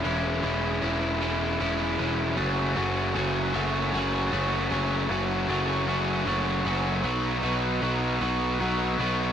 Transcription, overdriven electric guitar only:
\new Staff \with { instrumentName = "Overdriven electric guitar" } { \time 6/8 \key fis \dorian \tempo 4. = 51 <e gis cis' e'>8 <e gis cis' e'>8 <e gis cis' e'>8 <e gis cis' e'>8 <e gis cis' e'>8 <e gis cis' e'>8 | <fis, cis fis a cis' fis'>8 <fis, cis fis a cis' fis'>8 <fis, cis fis a cis' fis'>8 <fis, cis fis a cis' fis'>8 <fis, cis fis a cis' fis'>8 <fis, cis fis a cis' fis'>8 | <fis, cis fis a cis' fis'>8 <fis, cis fis a cis' fis'>8 <fis, cis fis a cis' fis'>8 <fis, cis fis a cis' fis'>8 <fis, cis fis a cis' fis'>8 <fis, cis fis a cis' fis'>8 | <b, fis b dis' fis'>8 <b, fis b dis' fis'>8 <b, fis b dis' fis'>8 <b, fis b dis' fis'>8 <b, fis b dis' fis'>8 <b, fis b dis' fis'>8 | }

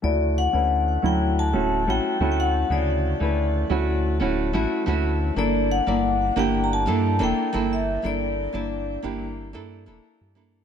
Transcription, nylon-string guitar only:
\new Staff \with { instrumentName = "Nylon-string guitar" } { \time 4/4 \key d \major \tempo 4 = 90 <cis a e' fis'>8. <a cis' e' b'>8. <fis a cis' e'>8. <a cis' e' fis'>8 <a cis' e' fis'>8 <a cis' e' fis'>8. | <cis a e' fis'>8. <cis a e' b'>8. <a cis' e' fis'>8. <a cis' e' fis'>8 <a cis' e' fis'>8 <a cis' e' fis'>8. | <bes d' e' a'>8. <bes d' e' d''>8. <bes d' e' g'>8. <bes d' e' a'>8 <bes d' e' a'>8 <bes d' e' a'>8. | <bes d' e' a'>8. <bes d' e' d''>8. <bes d' e' g'>8. <bes d' e' a'>8 <bes d' e' a'>8. <bes d' e' a'>8 | }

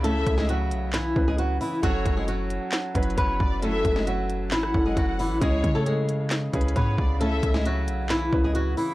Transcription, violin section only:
\new Staff \with { instrumentName = "Violin section" } { \time 4/4 \key fis \minor \tempo 4 = 134 e''4 r2. | cis''4 r4. b'8 cis''8 d''8 | e''4 r4 fis''2 | cis''4 r4. b'8 cis''8 d''8 |
e''4 r2. | }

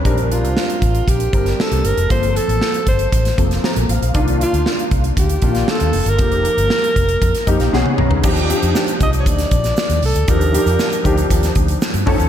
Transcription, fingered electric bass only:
\new Staff \with { instrumentName = "Fingered electric bass" } { \clef bass \time 4/4 \key ees \lydian \tempo 4 = 117 bes,,8. c,16 r8 a,,8 bes,,8 g,,8 r16 c,16 g,,16 f,,16 | g,,8. a,,16 r8 g,,8 a,,8 f,,8 r16 bes,,16 a,,16 bes,,16 | c,8. d,16 r8 c,8 d,8 bes,,8 r16 ees,16 f,,16 g,,16 | f,,8. g,,16 r8 f,,8 f,16 r16 f,16 bes,,16 b,,16 r16 b,,16 cis,16 |
ees,8. f,16 r8 c,8 d,8 bes,,8 r16 ees,16 c,16 d,16 | ees,8. f,16 r8 d,8 ees,8 d,8 r16 g,16 f,16 ees,16 | }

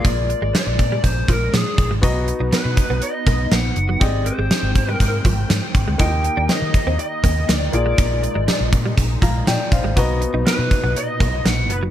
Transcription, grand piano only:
\new Staff \with { instrumentName = "Grand piano" } { \time 4/4 \key bes \mixolydian \tempo 4 = 121 << { r1 | r1 | r1 | r1 |
r2 r8 <f'' bes''>8 <d'' g''>8 <c'' f''>8~ | <c'' f''>8 r2. r8 | } \\ { <bes f' aes' d''>2.~ <bes f' aes' d''>8 r8 | <b fis' dis'' ais''>1 | <c' g' aes' ees''>1 | <bes ees' f' g' ees''>2.~ <bes ees' f' g' ees''>8 <bes f' aes' d''>8~ |
<bes f' aes' d''>2.~ <bes f' aes' d''>8 r8 | <b fis' dis'' ais''>1 | } >> }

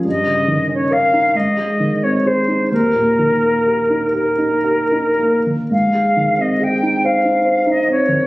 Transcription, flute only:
\new Staff \with { instrumentName = "Flute" } { \time 6/8 \key aes \major \tempo 4. = 45 ees''8. des''16 f''8 ees''8. des''16 c''8 | bes'4. bes'4. | f''8. ees''16 g''8 f''8. ees''16 des''8 | }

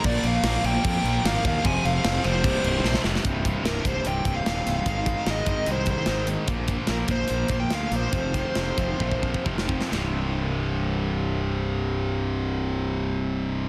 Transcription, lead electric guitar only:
\new Staff \with { instrumentName = "Lead electric guitar" } { \time 4/4 \key c \minor \tempo 4 = 148 d''8 f''4 g''4. f''8 f''8 | aes''8 f''4 c''2 r8 | r4 bes'8 c''8 \tuplet 3/2 { g''4 f''8~ f''4 f''8~ } | f''4 ees''8 ees''8 c''8 c''4 r8 |
r4 bes'8 c''8~ \tuplet 3/2 { c''4 g''8 } f''8 c''8~ | c''2. r4 | r1 | r1 | }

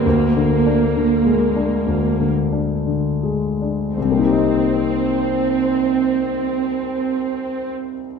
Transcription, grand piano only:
\new Staff \with { instrumentName = "Grand piano" } { \clef bass \time 4/4 \key c \minor \tempo 4 = 56 \tuplet 3/2 { d,8 d8 d'8 d8 aes8 d'8 d,8 d8 d'8 d8 aes8 d'8 } | <c, c bes ees' g' ees''>1 | }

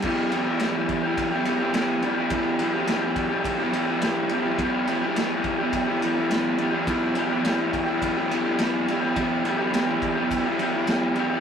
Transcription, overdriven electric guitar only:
\new Staff \with { instrumentName = "Overdriven electric guitar" } { \time 4/4 \key e \minor \tempo 4 = 105 <e b e' g'>8 <e b e' g'>16 <b e' g'>16 <e b e' g'>16 <b e' g'>8 <b e' g'>8 <b e' g'>16 <e b e' g'>16 <b e' g'>16 <e b e' g'>8 <e b e' g'>16 <b e' g'>16 | <e b e' g'>8 <e b e' g'>16 <b e' g'>16 <e b e' g'>16 <b e' g'>8 <b e' g'>8 <b e' g'>16 <e b e' g'>16 <b e' g'>16 <e b e' g'>8 <e b e' g'>16 <b e' g'>16 | <e b e' g'>8 <e b e' g'>16 <b e' g'>16 <e b e' g'>16 <b e' g'>8 <b e' g'>8 <b e' g'>16 <e b e' g'>16 <b e' g'>16 <e b e' g'>8 <e b e' g'>16 <b e' g'>16 | <e b e' g'>8 <e b e' g'>16 <b e' g'>16 <e b e' g'>16 <b e' g'>8 <b e' g'>8 <b e' g'>16 <e b e' g'>16 <b e' g'>16 <e b e' g'>8 <e b e' g'>16 <b e' g'>16 |
<e b e' g'>8 <e b e' g'>16 <b e' g'>16 <e b e' g'>16 <b e' g'>8 <b e' g'>8 <b e' g'>16 <e b e' g'>16 <b e' g'>16 <e b e' g'>8 <e b e' g'>16 <b e' g'>16 | }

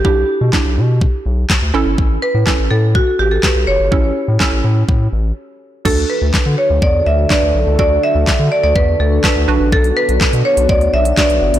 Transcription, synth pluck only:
\new Staff \with { instrumentName = "Synth pluck" } { \time 4/4 \key d \major \tempo 4 = 124 <d' e' g'>8 r8 <d' e' g'>4~ <d' e' g'>16 r4 r16 <cis' e' a'>8~ | <cis' e' a'>8 r8 <cis' e' a'>4~ <cis' e' a'>16 r4. r16 | <cis' e' a'>8 r8 <cis' e' a'>4~ <cis' e' a'>16 r4. r16 | <d' fis' a'>4~ <d' fis' a'>16 r4. r16 <d' fis' b'>8 r8 |
<d' fis' a'>4~ <d' fis' a'>16 r4. r16 <d' fis' a'>8 <d' fis' b'>8~ | <d' fis' b'>4 r2 <d' fis' b'>8 r8 | }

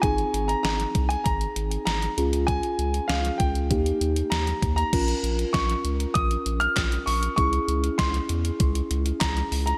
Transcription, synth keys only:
\new Staff \with { instrumentName = "Synth keys" } { \time 4/4 \key bes \dorian \tempo 4 = 98 <c' ees' aes'>2.~ <c' ees' aes'>8 <des' f' aes'>8~ | <des' f' aes'>2 <bes ees' g'>2 | <des' f' bes'>1 | <des' fes' aes'>1 | }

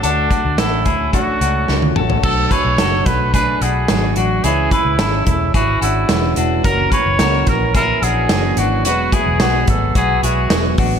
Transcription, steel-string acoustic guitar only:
\new Staff \with { instrumentName = "Steel-string acoustic guitar" } { \time 4/4 \key b \dorian \tempo 4 = 109 <d a fis'>4 <d a cis' fis'>4 <d a cis' fis'>4 <d a cis' fis'>8 <a cis' fis'>8 | <b, fis a d' fis'>8 <a d' fis'>8 <b, fis a d' fis'>8 <a d' fis'>8 <fis a d' fis'>8 <a d' fis'>8 <b, fis a d' fis'>4 | <cis e gis cis' e'>8 <gis cis' e'>8 <cis e gis cis' e'>8 <gis cis' e'>8 <e gis cis' e'>8 <gis cis' e'>8 <cis e gis cis' e'>4 | <fis, cis e ais cis' fis'>8 <e fis'>8 <fis, cis e ais cis' fis'>8 <e ais cis' fis'>8 <e ais cis' fis'>8 <e ais cis' fis'>8 <fis, cis e ais cis' fis'>4 |
<e, b, fis gis b fis'>8 <fis gis fis'>8 <e, b, fis gis b fis'>8 <fis gis b fis'>8 <fis gis b>8 <fis gis b fis'>8 <e, b, fis gis b fis'>4 | }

